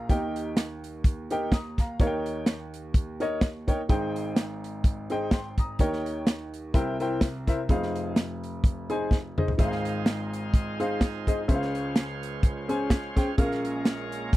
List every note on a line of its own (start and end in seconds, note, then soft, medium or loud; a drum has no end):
0.00 0.34 F5 medium
0.00 0.33 A#5 medium
0.09 1.96 D#2 medium
0.09 1.96 D#3 medium
0.09 0.61 D#4 medium
0.09 0.61 G4 medium
0.09 0.61 A#4 medium
0.09 0.61 G5 medium
0.09 kick loud
0.09 closed hi-hat medium
0.36 closed hi-hat medium
0.57 snare medium
0.57 closed hi-hat medium
0.84 closed hi-hat medium
1.04 kick loud
1.04 closed hi-hat medium
1.30 1.54 D#4 medium
1.30 1.54 G4 medium
1.30 1.54 A#4 medium
1.30 1.52 G5 medium
1.30 closed hi-hat medium
1.52 1.77 A#5 soft
1.52 1.77 D#6 medium
1.52 kick medium
1.52 snare loud
1.52 closed hi-hat medium
1.78 2.00 F5 medium
1.78 2.24 A#5 medium
1.78 kick medium
1.78 snare soft
1.78 closed hi-hat medium
2.00 3.86 D#2 medium
2.00 3.86 D#3 medium
2.00 2.51 D#4 medium
2.00 2.51 A#4 medium
2.00 2.52 C#5 medium
2.00 2.06 F5 medium
2.00 kick loud
2.00 closed hi-hat medium
2.07 2.55 G5 medium
2.26 closed hi-hat medium
2.46 snare medium
2.46 closed hi-hat medium
2.74 closed hi-hat medium
2.94 kick loud
2.94 closed hi-hat medium
3.20 3.44 D#4 medium
3.20 3.44 A#4 medium
3.20 3.44 C#5 medium
3.20 3.44 D#5 medium
3.20 closed hi-hat medium
3.41 kick medium
3.41 snare loud
3.41 closed hi-hat medium
3.67 3.79 D#4 medium
3.67 3.79 A#4 medium
3.67 3.79 C#5 medium
3.67 3.80 G5 medium
3.67 kick medium
3.67 closed hi-hat medium
3.89 5.75 G#1 medium
3.89 5.75 G#2 medium
3.89 4.41 D#4 medium
3.89 4.41 G#4 medium
3.89 4.41 C5 medium
3.89 4.41 G5 medium
3.89 kick loud
3.89 closed hi-hat medium
4.16 closed hi-hat medium
4.36 snare loud
4.36 closed hi-hat medium
4.64 closed hi-hat medium
4.84 kick loud
4.84 closed hi-hat medium
5.10 5.34 D#4 medium
5.10 5.34 G#4 medium
5.10 5.34 C5 medium
5.10 5.32 G5 medium
5.10 closed hi-hat medium
5.31 5.58 G5 medium
5.31 5.57 C6 medium
5.31 kick medium
5.31 snare loud
5.31 closed hi-hat medium
5.58 6.04 A#5 medium
5.58 6.04 D#6 medium
5.58 kick medium
5.58 closed hi-hat medium
5.79 6.71 D#2 medium
5.79 6.71 D#3 medium
5.79 6.31 D#4 medium
5.79 6.31 A#4 medium
5.79 6.32 C#5 medium
5.79 6.32 G5 medium
5.79 kick medium
5.79 closed hi-hat medium
5.93 snare soft
6.06 closed hi-hat medium
6.27 snare medium
6.27 closed hi-hat medium
6.54 closed hi-hat medium
6.74 7.65 C2 medium
6.74 7.65 C3 medium
6.74 6.95 E4 medium
6.74 6.95 A#4 medium
6.74 6.95 C5 medium
6.74 6.96 G5 medium
6.74 kick loud
6.74 closed hi-hat medium
7.00 7.24 E4 medium
7.00 7.24 A#4 medium
7.00 7.24 C5 medium
7.00 7.25 G5 medium
7.00 closed hi-hat medium
7.21 kick medium
7.21 snare loud
7.21 closed hi-hat loud
7.47 7.59 E4 medium
7.47 7.60 A#4 medium
7.47 7.60 C5 medium
7.47 7.60 E5 medium
7.47 kick medium
7.47 snare soft
7.47 closed hi-hat medium
7.69 9.55 F1 medium
7.69 9.56 F2 medium
7.69 8.21 D#4 medium
7.69 8.21 G#4 medium
7.69 8.22 C5 medium
7.69 8.22 F5 medium
7.69 kick loud
7.69 closed hi-hat medium
7.83 snare soft
7.96 closed hi-hat medium
8.16 snare medium
8.16 closed hi-hat medium
8.44 closed hi-hat medium
8.64 kick loud
8.64 closed hi-hat medium
8.90 9.13 D#4 medium
8.90 9.13 G#4 medium
8.90 9.14 C5 medium
8.90 9.14 G#5 medium
8.90 closed hi-hat medium
9.11 kick medium
9.11 snare soft
9.38 9.49 D#4 medium
9.38 9.49 G#4 medium
9.38 9.50 C5 medium
9.38 9.50 D#5 medium
9.38 mid tom medium
9.48 floor tom medium
9.58 11.45 G#1 medium
9.58 11.45 G#2 medium
9.58 14.37 G#3 medium
9.58 10.10 D#4 medium
9.58 11.47 D#4 medium
9.58 11.47 F4 medium
9.58 10.11 G#4 medium
9.58 10.11 C5 medium
9.58 13.35 C5 medium
9.58 9.66 E5 medium
9.58 kick loud
9.58 closed hi-hat medium
9.65 10.14 F5 medium
9.72 snare soft
9.85 closed hi-hat medium
10.06 snare medium
10.06 closed hi-hat medium
10.34 closed hi-hat medium
10.54 kick loud
10.54 closed hi-hat medium
10.80 11.03 D#4 medium
10.80 11.03 G#4 medium
10.80 11.04 C5 medium
10.80 11.04 F5 medium
10.80 closed hi-hat medium
11.01 kick medium
11.01 snare loud
11.01 closed hi-hat medium
11.27 11.39 D#4 medium
11.27 11.39 G#4 medium
11.27 11.39 C5 medium
11.27 11.39 D#5 medium
11.27 kick medium
11.27 closed hi-hat medium
11.48 13.34 C#2 medium
11.48 13.34 C#3 medium
11.48 12.00 C#4 medium
11.48 13.36 C#4 medium
11.48 13.36 F4 medium
11.48 12.00 G#4 medium
11.48 12.00 C5 medium
11.48 11.55 E5 medium
11.48 kick medium
11.48 closed hi-hat medium
11.54 12.03 F5 medium
11.62 snare soft
11.75 closed hi-hat medium
11.96 snare loud
11.96 closed hi-hat medium
12.23 closed hi-hat medium
12.43 kick loud
12.43 closed hi-hat medium
12.69 12.92 C#4 medium
12.69 12.93 G#4 medium
12.69 12.93 C5 medium
12.69 12.93 G#5 medium
12.69 closed hi-hat medium
12.90 kick medium
12.90 snare loud
12.90 closed hi-hat medium
13.16 13.28 C#4 medium
13.16 13.28 G#4 medium
13.16 13.28 C5 medium
13.16 13.29 G5 medium
13.16 kick medium
13.16 snare soft
13.16 closed hi-hat medium
13.38 14.37 A#1 medium
13.38 14.37 A#2 medium
13.38 13.89 C#4 medium
13.38 14.37 C#4 medium
13.38 14.37 F4 medium
13.38 13.89 G#4 medium
13.38 13.90 A#4 medium
13.38 14.37 A#4 medium
13.38 13.90 F5 medium
13.38 kick loud
13.38 closed hi-hat medium
13.51 snare soft
13.65 closed hi-hat medium
13.85 snare medium
13.85 closed hi-hat medium
14.12 closed hi-hat medium
14.33 kick loud
14.33 closed hi-hat medium